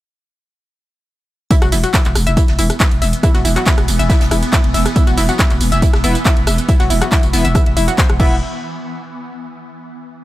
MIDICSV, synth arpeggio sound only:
0, 0, Header, 1, 2, 480
1, 0, Start_track
1, 0, Tempo, 431655
1, 1675, Time_signature, 4, 2, 24, 8
1, 11388, End_track
2, 0, Start_track
2, 0, Title_t, "Synth arpeggio sound"
2, 0, Program_c, 0, 84
2, 1676, Note_on_c, 0, 64, 85
2, 1718, Note_off_c, 0, 64, 0
2, 1801, Note_on_c, 0, 66, 75
2, 1897, Note_off_c, 0, 66, 0
2, 1916, Note_on_c, 0, 64, 77
2, 1986, Note_off_c, 0, 64, 0
2, 2041, Note_on_c, 0, 66, 76
2, 2079, Note_off_c, 0, 66, 0
2, 2156, Note_on_c, 0, 64, 89
2, 2226, Note_off_c, 0, 64, 0
2, 2520, Note_on_c, 0, 76, 80
2, 2617, Note_off_c, 0, 76, 0
2, 2636, Note_on_c, 0, 64, 84
2, 2677, Note_off_c, 0, 64, 0
2, 2877, Note_on_c, 0, 64, 78
2, 2946, Note_off_c, 0, 64, 0
2, 3116, Note_on_c, 0, 64, 83
2, 3186, Note_off_c, 0, 64, 0
2, 3355, Note_on_c, 0, 76, 80
2, 3425, Note_off_c, 0, 76, 0
2, 3594, Note_on_c, 0, 64, 86
2, 3637, Note_off_c, 0, 64, 0
2, 3719, Note_on_c, 0, 66, 77
2, 3816, Note_off_c, 0, 66, 0
2, 3834, Note_on_c, 0, 64, 76
2, 3905, Note_off_c, 0, 64, 0
2, 3959, Note_on_c, 0, 66, 75
2, 3999, Note_off_c, 0, 66, 0
2, 4075, Note_on_c, 0, 64, 88
2, 4145, Note_off_c, 0, 64, 0
2, 4440, Note_on_c, 0, 76, 77
2, 4537, Note_off_c, 0, 76, 0
2, 4554, Note_on_c, 0, 64, 87
2, 4597, Note_off_c, 0, 64, 0
2, 4793, Note_on_c, 0, 64, 76
2, 4865, Note_off_c, 0, 64, 0
2, 5034, Note_on_c, 0, 64, 86
2, 5105, Note_off_c, 0, 64, 0
2, 5274, Note_on_c, 0, 76, 79
2, 5344, Note_off_c, 0, 76, 0
2, 5514, Note_on_c, 0, 64, 89
2, 5557, Note_off_c, 0, 64, 0
2, 5639, Note_on_c, 0, 66, 77
2, 5736, Note_off_c, 0, 66, 0
2, 5755, Note_on_c, 0, 64, 76
2, 5825, Note_off_c, 0, 64, 0
2, 5880, Note_on_c, 0, 66, 76
2, 5919, Note_off_c, 0, 66, 0
2, 5995, Note_on_c, 0, 64, 85
2, 6066, Note_off_c, 0, 64, 0
2, 6360, Note_on_c, 0, 76, 76
2, 6457, Note_off_c, 0, 76, 0
2, 6475, Note_on_c, 0, 64, 84
2, 6517, Note_off_c, 0, 64, 0
2, 6715, Note_on_c, 0, 64, 78
2, 6785, Note_off_c, 0, 64, 0
2, 6955, Note_on_c, 0, 64, 88
2, 7025, Note_off_c, 0, 64, 0
2, 7196, Note_on_c, 0, 76, 80
2, 7266, Note_off_c, 0, 76, 0
2, 7435, Note_on_c, 0, 64, 89
2, 7477, Note_off_c, 0, 64, 0
2, 7559, Note_on_c, 0, 66, 80
2, 7657, Note_off_c, 0, 66, 0
2, 7675, Note_on_c, 0, 64, 77
2, 7745, Note_off_c, 0, 64, 0
2, 7801, Note_on_c, 0, 66, 76
2, 7839, Note_off_c, 0, 66, 0
2, 7916, Note_on_c, 0, 64, 84
2, 7986, Note_off_c, 0, 64, 0
2, 8281, Note_on_c, 0, 76, 79
2, 8377, Note_off_c, 0, 76, 0
2, 8395, Note_on_c, 0, 64, 84
2, 8437, Note_off_c, 0, 64, 0
2, 8636, Note_on_c, 0, 64, 101
2, 8677, Note_off_c, 0, 64, 0
2, 8760, Note_on_c, 0, 66, 80
2, 8799, Note_off_c, 0, 66, 0
2, 8875, Note_on_c, 0, 72, 85
2, 8980, Note_off_c, 0, 72, 0
2, 9115, Note_on_c, 0, 64, 96
2, 9338, Note_off_c, 0, 64, 0
2, 11388, End_track
0, 0, End_of_file